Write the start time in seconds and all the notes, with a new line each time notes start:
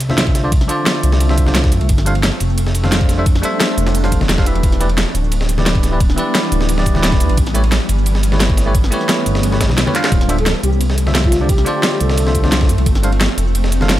Already playing: C2 F3 A3 C4 E5
0.00 closed hi-hat, ride, shaker
0.09 D3 D4 F4 C5 E5, snare, high conga
0.18 snare, closed hi-hat, ride
0.27 kick
0.35 snare, closed hi-hat, ride, shaker
0.43 D3 D4 F4 C5 D5
0.52 kick, closed hi-hat, ride
0.61 snare
0.68 D3 D4 F4 C5 D5, closed hi-hat, ride, shaker
0.86 snare, closed hi-hat, ride
1.03 C2, closed hi-hat, ride, shaker
1.12 snare, shaker
1.20 closed hi-hat, ride
1.29 D3 D4 F4 C5 E5, snare
1.38 kick, closed hi-hat, ride, shaker
1.46 D3 D4 F4 C5 D5, snare, high conga
1.55 snare, closed hi-hat, ride
1.64 kick, snare
1.72 G2 F3 D4, closed hi-hat, ride, shaker
1.81 C2, ride
1.89 G1, kick, closed hi-hat, ride
1.98 snare, ride
2.06 G3 D4 A4 C5 F5, closed hi-hat, ride, shaker
2.15 ride
2.23 snare, closed hi-hat, ride
2.40 F1, closed hi-hat, ride, shaker
2.50 shaker
2.58 closed hi-hat, ride
2.67 snare
2.75 closed hi-hat, ride, shaker
2.83 G3 D4 A4 C5 F5, snare, high conga
2.92 snare, closed hi-hat, ride
3.01 kick
3.09 snare, closed hi-hat, ride, shaker
3.17 G3 D4 A4 C5 E5
3.26 kick, closed hi-hat, ride
3.35 snare
3.42 G3 D4 A4 C5 E5, closed hi-hat, ride, shaker
3.60 snare, closed hi-hat, ride
3.78 F1, closed hi-hat, ride, shaker
3.87 snare, shaker
3.95 closed hi-hat, ride
4.03 G3 D4 A4 C5 F5, snare
4.12 kick, closed hi-hat, ride, shaker
4.21 snare, high conga
4.29 E1, snare, closed hi-hat, ride
4.37 G3 D4 A4 C5 F5, kick, snare
4.46 E3 G3 B3 D4 E4 G4 B4 E5, closed hi-hat, ride, shaker
4.55 ride
4.63 E1, kick, closed hi-hat, ride
4.72 snare, ride
4.80 E3 E4 G4 B4 D5, closed hi-hat, ride, shaker
4.89 ride
4.98 snare, closed hi-hat, ride
5.15 D1, closed hi-hat, ride, shaker
5.24 shaker
5.32 closed hi-hat, ride
5.41 snare
5.49 closed hi-hat, ride, shaker
5.57 E3 E4 G4 B4 D5, snare, high conga
5.66 snare, closed hi-hat, ride
5.75 kick
5.83 snare, closed hi-hat, ride, shaker
5.92 E3 E4 G4 B4 D5
6.00 kick, closed hi-hat, ride
6.10 snare
6.16 E3 E4 G4 B4 D5, closed hi-hat, ride, shaker
6.35 snare, closed hi-hat, ride
6.52 D1, closed hi-hat, ride, shaker
6.61 snare, shaker
6.69 closed hi-hat, ride
6.77 E3 E4 G4 B4 D5, snare
6.86 kick, closed hi-hat, ride, shaker
6.94 E3 E4 G4 B4 D5, snare, high conga
7.03 snare, closed hi-hat, ride
7.12 kick, snare
7.20 E2, closed hi-hat, ride, shaker
7.29 A1, ride
7.37 A1 B3 C#4, kick, closed hi-hat, ride
7.46 snare, ride
7.54 A3 E4 G4 B4 C#5, closed hi-hat, ride, shaker
7.64 ride
7.72 snare, closed hi-hat, ride
7.89 G1, closed hi-hat, ride, shaker
7.98 shaker
8.06 closed hi-hat, ride
8.15 snare
8.23 closed hi-hat, ride, shaker
8.32 A3 E4 G4 B4 C#5, snare, high conga
8.40 snare, closed hi-hat, ride
8.50 kick
8.57 snare, closed hi-hat, ride, shaker
8.66 A3 E4 G4 B4 C#5
8.75 kick, closed hi-hat, ride
8.84 snare
8.90 A3 E4 G4 B4 C#5, closed hi-hat, ride, shaker
9.01 snare
9.09 snare, closed hi-hat, ride
9.26 G1, closed hi-hat, ride, shaker
9.35 snare, shaker
9.43 closed hi-hat, ride
9.52 A3 E4 G4 B4 C#5, snare
9.61 kick, snare, closed hi-hat, ride, shaker
9.69 B1, snare, high conga
9.78 snare, closed hi-hat, ride
9.86 A3 E4 G4 B4 C#5, high conga
9.94 D3 D4 F4 C5 F5, clap, closed hi-hat, ride, shaker
10.04 snare, clap, ride
10.12 D1 F3 A3 C4 E5, kick, closed hi-hat, ride
10.21 snare, ride
10.28 D3 D4 F4 C5 E5, closed hi-hat, ride, shaker
10.38 A4, ride
10.46 snare, closed hi-hat, ride
10.63 C2 G4, closed hi-hat, ride, shaker
10.72 G4, shaker
10.81 closed hi-hat, ride
10.90 snare
10.98 closed hi-hat, ride, shaker
11.06 D3 D4 F4 C5 E5, snare, high conga
11.15 snare, closed hi-hat, ride
11.24 F4, kick
11.32 snare, closed hi-hat, ride, shaker
11.41 D3 D4 F4 G4 C5 D5
11.49 kick, closed hi-hat, ride
11.58 snare
11.65 D3 D4 F4 C5 D5, closed hi-hat, ride, shaker
11.75 G4
11.83 snare, closed hi-hat, ride
12.00 C2 A4, closed hi-hat, ride, shaker
12.10 snare, shaker
12.18 closed hi-hat, ride
12.26 D3 D4 F4 C5 E5, snare
12.35 kick, closed hi-hat, ride, shaker
12.43 D3 D4 F4 C5 D5, snare, high conga
12.52 snare, closed hi-hat, ride
12.61 kick, snare
12.69 G2 F3 D4, closed hi-hat, ride, shaker
12.78 C2, ride
12.86 G1, kick, closed hi-hat, ride
12.95 snare, ride
13.03 G3 D4 A4 C5 F5, closed hi-hat, ride, shaker
13.12 ride
13.21 snare, closed hi-hat, ride
13.38 F1, closed hi-hat, ride, shaker
13.47 shaker
13.55 closed hi-hat, ride
13.64 snare
13.72 closed hi-hat, ride, shaker
13.80 G3 D4 A4 C5 F5, snare, high conga
13.89 snare, closed hi-hat, ride